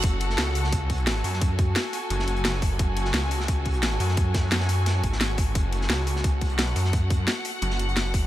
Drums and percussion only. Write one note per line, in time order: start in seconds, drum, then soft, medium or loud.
0.04 kick loud
0.04 closed hi-hat loud
0.20 closed hi-hat medium
0.30 snare medium
0.38 snare loud
0.38 closed hi-hat medium
0.38 closed hi-hat loud
0.55 closed hi-hat medium
0.55 open hi-hat medium
0.64 snare medium
0.73 kick loud
0.73 closed hi-hat medium
0.90 kick medium
0.90 closed hi-hat medium
0.90 open hi-hat medium
0.98 closed hi-hat soft
1.07 snare loud
1.07 closed hi-hat loud
1.07 closed hi-hat medium
1.16 closed hi-hat soft
1.24 closed hi-hat medium
1.24 open hi-hat medium
1.33 snare soft
1.41 kick loud
1.41 closed hi-hat loud
1.59 kick loud
1.59 closed hi-hat medium
1.75 snare loud
1.75 closed hi-hat medium
1.75 closed hi-hat loud
1.93 closed hi-hat medium
1.93 open hi-hat medium
2.10 closed hi-hat loud
2.10 closed hi-hat medium
2.19 snare medium
2.27 closed hi-hat medium
2.36 closed hi-hat soft
2.45 snare loud
2.45 closed hi-hat loud
2.45 closed hi-hat medium
2.54 closed hi-hat soft
2.62 kick loud
2.62 closed hi-hat medium
2.62 open hi-hat medium
2.79 kick loud
2.79 closed hi-hat medium
2.97 closed hi-hat medium
3.05 snare medium
3.14 snare loud
3.14 closed hi-hat loud
3.14 closed hi-hat medium
3.31 closed hi-hat medium
3.31 open hi-hat medium
3.40 snare medium
3.48 kick loud
3.48 closed hi-hat loud
3.65 kick medium
3.65 closed hi-hat medium
3.65 open hi-hat medium
3.74 closed hi-hat soft
3.82 snare loud
3.82 closed hi-hat medium
3.82 closed hi-hat loud
3.91 closed hi-hat soft
4.00 closed hi-hat medium
4.00 open hi-hat medium
4.09 snare soft
4.17 kick loud
4.17 closed hi-hat medium
4.17 closed hi-hat loud
4.34 kick loud
4.34 snare loud
4.34 closed hi-hat medium
4.51 snare loud
4.51 closed hi-hat medium
4.60 snare medium
4.69 closed hi-hat medium
4.69 open hi-hat medium
4.86 snare loud
4.86 closed hi-hat medium
5.04 kick medium
5.04 closed hi-hat medium
5.13 snare soft
5.21 snare loud
5.21 closed hi-hat loud
5.21 closed hi-hat medium
5.38 kick loud
5.38 closed hi-hat medium
5.38 open hi-hat medium
5.55 kick loud
5.55 closed hi-hat medium
5.73 closed hi-hat medium
5.81 snare medium
5.90 snare loud
5.90 closed hi-hat medium
6.07 closed hi-hat medium
6.07 open hi-hat medium
6.16 snare medium
6.24 kick loud
6.24 closed hi-hat medium
6.41 kick medium
6.41 closed hi-hat medium
6.41 open hi-hat medium
6.50 closed hi-hat soft
6.59 snare loud
6.59 closed hi-hat medium
6.67 closed hi-hat soft
6.76 closed hi-hat medium
6.76 open hi-hat medium
6.85 snare soft
6.93 kick loud
6.93 closed hi-hat medium
6.93 closed hi-hat loud
7.10 kick loud
7.10 closed hi-hat medium
7.27 snare loud
7.27 closed hi-hat medium
7.45 closed hi-hat medium
7.45 open hi-hat medium
7.62 closed hi-hat medium
7.70 snare soft
7.79 closed hi-hat medium
7.89 closed hi-hat soft
7.96 snare loud
7.96 closed hi-hat medium
8.06 closed hi-hat soft
8.14 kick loud
8.14 closed hi-hat medium
8.14 open hi-hat medium